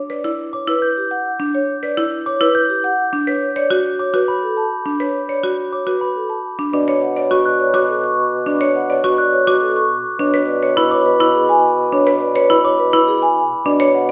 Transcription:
0.10 B4 D5
0.24 E4
0.53 C#5 D6
0.67 E4 B4
0.82 G6
0.97 G4
1.11 F#5
1.40 D4
1.55 C#5
1.83 B4 D5
1.97 E4
2.26 C#5 D6
2.41 E4 B4
2.55 G6
2.69 G4
2.84 F#5
3.13 D4
3.27 B4 C#5
3.56 C#5 D5
3.70 F#4
3.99 C#5 D6
4.14 F#4 B4
4.28 B5
4.43 A4
4.57 A5
4.86 D4
5.00 B4 C#5
5.29 C#5 D5
5.43 F#4
5.72 C#5 D6
5.87 F#4 B4
6.01 B5
6.16 A4
6.30 A5
6.59 D4
6.73 B2 D4 D5
6.88 C#5
7.02 F#5
7.16 C#5 D5
7.31 F#4 C#6
7.46 D5 F#6
7.60 C#5
7.74 F#4 D6
7.89 A4
8.04 C#6
8.46 D4 D5
8.61 C#5
8.75 F#5
8.90 C#5 D5
9.04 F#4 C#6
9.18 D5 F#6
9.33 C#5
9.47 F#4 D6
9.62 A4
9.76 C#6
10.19 B2 D4 C#5
10.34 B4
10.49 D5
10.63 B4 C#5
10.77 E4 B5
10.91 C#5 D6
11.06 B4
11.20 E4 B5
11.35 G#4
11.49 G#5
11.92 D4 C#5
12.07 B4
12.21 D5
12.35 B4 C#5
12.50 E4 B5
12.65 C#5 D6
12.79 B4
12.93 E4 B5
13.08 G#4
13.22 G#5
13.65 B2 D4 D5
13.80 C#5
13.95 F#5

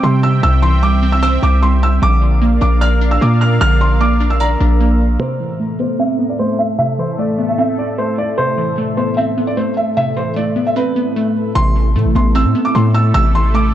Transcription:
Already playing: C4 C5 E5 G5
0.03 C3 G3 C6
0.23 E6
0.43 C2 C3 E6
0.62 E3 C6
0.83 G3 D6
1.03 C4
1.12 E6
1.23 C5 E6
1.43 C2 C4 D6
1.63 G3 C6
1.83 E6
2.02 A#1 D3 A#3 A#4 D5 F5 D6
2.22 F3
2.42 A#3
2.61 A#1 D4 D6
2.81 D5 F6
3.01 D4
3.11 E6
3.21 A#2 A#3 D6
3.41 F6
3.61 A#1 D3 F6
3.81 F3 C6
4.01 A#3 D6
4.21 D4
4.30 E6
4.40 D5 A#5
4.60 A#1 D4
4.80 A#3
5.20 A2 C3 A3 A4 C5 E5
5.40 E3
5.60 A3
5.80 B3 C5
5.99 C4 E5
6.19 B3
6.29 D5
6.39 A3 C5
6.59 E5
6.79 C3 E5
6.99 E3 C5
7.18 A3 D5
7.39 B3
7.49 E5
7.58 C4 E5
7.78 D5
7.98 A3 C5
8.18 D5
8.38 C3 C5
8.58 E3
8.78 A3
8.97 B3 C5
9.17 C4 E5
9.38 B3
9.47 D5
9.57 A3 C5
9.77 E5
9.97 C3 E5
10.17 E3 C5
10.36 A3 D5
10.56 B3
10.67 E5
10.76 C4 B4
10.96 B3
11.16 A3
11.55 A1 C3 A3 E4 A4 C6
11.76 E3
11.95 A2 A3
12.05 A1
12.15 A1 B3 C6
12.35 C4 E6
12.45 A2
12.55 B3
12.65 D6
12.75 A2 A3 C6
12.95 E6
13.14 A1 C3 E6
13.35 E3 C6
13.54 A3 D6

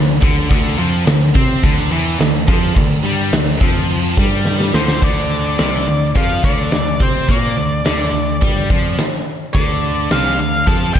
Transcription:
Already playing: D2 D3
0.22 D2 D3, kick, crash
0.50 D2 D3, kick, crash
0.79 F2 F3, crash
1.07 D2 D3, snare, crash
1.35 C3 C4, kick, crash
1.63 D2 D3, kick, crash
1.78 snare
1.91 E2 E3, crash
2.19 D2 D3, snare, crash
2.48 F2 F3, kick, crash
2.76 D2 D3, kick, crash
3.04 G2 G3, crash
3.33 D2 D3, snare, crash
3.61 F2 F3, kick, crash
3.89 crash
4.17 G2 G3, kick, crash
4.45 snare
4.60 snare
4.74 D2 D3 C5, snare
4.88 snare
5.02 D2 D3 D5, kick, crash
5.58 C2 C3, snare, open hi-hat
5.88 D2 D3
6.15 F2 F3 F5, kick, open hi-hat
6.44 D2 D3 D5, kick
6.72 D2 D3, snare, open hi-hat
7.00 C3 C4 C5, kick
7.29 A#2 A#3 D5, kick, open hi-hat
7.57 D2 D3
7.84 D2 D3, snare, open hi-hat
8.13 D2 D3
8.41 G2 G3, kick, open hi-hat
8.70 F2 F3, kick
8.99 snare, open hi-hat
9.13 snare
9.53 D2 D3 D5, kick, open hi-hat
10.11 C2 C3 F5, snare, open hi-hat
10.39 D2 D3 F5
10.66 F2 F3 A5, kick, open hi-hat
10.93 D2 D3 A5, kick

